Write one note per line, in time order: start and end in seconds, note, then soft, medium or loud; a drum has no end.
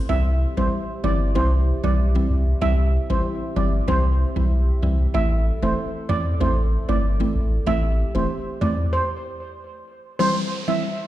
0.09 0.46 C2 loud
0.09 0.53 E3 medium
0.09 0.53 G3 medium
0.09 8.89 C4 medium
0.09 0.54 C4 medium
0.09 8.89 E4 medium
0.09 0.54 E4 loud
0.09 5.10 G4 medium
0.09 0.32 E5 loud
0.09 8.89 E5 medium
0.57 0.69 A1 medium
0.57 0.70 E3 medium
0.57 0.71 G3 medium
0.57 0.71 C4 medium
0.57 0.71 E4 medium
0.57 0.80 C5 medium
1.04 1.37 G1 medium
1.04 1.19 E3 medium
1.04 1.19 G3 medium
1.04 1.19 C4 medium
1.04 1.19 E4 medium
1.04 1.26 D5 medium
1.35 1.72 C2 loud
1.35 1.80 E3 medium
1.35 1.80 G3 medium
1.35 1.80 C4 medium
1.35 1.80 E4 loud
1.35 1.47 C5 medium
1.84 2.19 B1 medium
1.84 1.97 E3 medium
1.84 1.97 G3 medium
1.84 1.97 C4 medium
1.84 1.97 E4 medium
1.84 1.94 D5 medium
2.15 2.28 E3 medium
2.15 2.28 G3 medium
2.15 2.28 C4 medium
2.15 2.29 E4 medium
2.30 2.54 C2 loud
2.61 2.98 C2 loud
2.61 3.06 E3 medium
2.61 3.06 G3 medium
2.61 3.06 C4 medium
2.61 3.06 E4 loud
2.61 2.84 E5 loud
3.10 3.21 A1 medium
3.10 3.23 E3 medium
3.10 3.23 G3 medium
3.10 3.23 C4 medium
3.10 3.23 E4 medium
3.10 3.33 C5 medium
3.56 3.80 G1 medium
3.56 3.71 E3 medium
3.56 3.71 G3 medium
3.56 3.71 C4 medium
3.56 3.71 E4 medium
3.56 3.79 D5 medium
3.88 4.25 C2 loud
3.88 4.32 E3 loud
3.88 4.32 G3 medium
3.88 4.32 C4 medium
3.88 4.33 E4 loud
3.88 4.34 C5 medium
4.36 4.72 B1 medium
4.36 4.49 E3 medium
4.36 4.49 G3 medium
4.36 4.50 C4 medium
4.36 4.50 E4 medium
4.83 5.07 C2 medium
4.83 4.97 E3 medium
4.83 4.98 G3 medium
4.83 4.98 C4 medium
4.83 4.98 E4 medium
5.14 5.51 A1 loud
5.14 5.59 E3 medium
5.14 5.59 A3 medium
5.14 5.59 C4 medium
5.14 5.59 E4 loud
5.14 7.65 A4 medium
5.14 5.37 E5 loud
5.62 5.74 E1 medium
5.62 5.76 E3 medium
5.62 5.76 A3 medium
5.62 5.76 C4 medium
5.62 5.76 E4 medium
5.62 5.85 C5 medium
6.09 6.33 E2 medium
6.09 6.24 E3 medium
6.09 6.24 A3 medium
6.09 6.24 C4 medium
6.09 6.24 E4 medium
6.09 6.32 D5 medium
6.41 6.77 A1 loud
6.41 6.85 E3 medium
6.41 6.85 A3 medium
6.41 6.85 C4 medium
6.41 6.85 E4 loud
6.41 6.52 C5 medium
6.89 7.24 G1 medium
6.89 7.02 E3 medium
6.89 7.02 A3 medium
6.89 7.02 C4 medium
6.89 7.02 E4 medium
6.89 7.00 D5 medium
7.20 7.33 E3 medium
7.20 7.33 A3 medium
7.20 7.34 C4 medium
7.20 7.34 E4 medium
7.35 7.59 A1 medium
7.66 8.04 A1 loud
7.66 8.11 E3 medium
7.66 8.11 A3 medium
7.66 8.11 C4 medium
7.66 8.11 E4 loud
7.66 8.92 G4 medium
7.66 7.90 E5 loud
8.15 8.27 E1 loud
8.15 8.28 E3 medium
8.15 8.28 A3 medium
8.15 8.28 C4 medium
8.15 8.28 E4 medium
8.15 8.37 C5 medium
8.61 8.86 E2 medium
8.61 8.76 E3 medium
8.61 8.76 A3 medium
8.61 8.76 C4 medium
8.61 8.77 E4 medium
8.61 8.84 D5 medium
8.93 9.39 C5 medium
10.19 10.64 E3 medium
10.19 10.64 G3 medium
10.19 10.64 C4 medium
10.19 10.64 E4 loud
10.19 10.42 C5 loud
10.19 downlifter medium
10.68 10.81 E3 medium
10.68 10.81 G3 medium
10.68 10.81 C4 medium
10.68 10.81 E4 medium
10.68 10.79 E5 medium